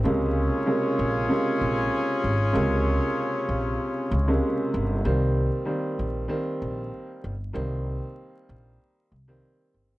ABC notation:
X:1
M:4/4
L:1/16
Q:"Swing 16ths" 1/4=96
K:Cphr
V:1 name="Horn section"
[DFAd]16- | [DFAd]12- [DFAd]2 z2 | z16 | z16 |]
V:2 name="Upright piano" clef=bass
[C,D,A,B,]4 [C,D,A,B,]4 [C,D,A,B,]6 z2 | [C,D,A,B,]8- [C,D,A,B,]2 z [C,D,A,B,]4- [C,D,A,B,] | [E,G,B,C]4 [E,G,B,C]4 [E,G,B,C]6 z2 | [E,G,B,C]8- [E,G,B,C]2 z [E,G,B,C]4- [E,G,B,C] |]
V:3 name="Upright bass" clef=bass
D,,3 z3 B,,,2 z2 B,,,2 z2 A,,,2 | D,,3 z3 B,,,2 z2 D,,2 z2 G,,,2 | C,,3 z3 B,,,2 z2 B,,,2 z2 G,,,2 | C,,3 z3 B,,,2 z2 C,,2 z2 G,,,2 |]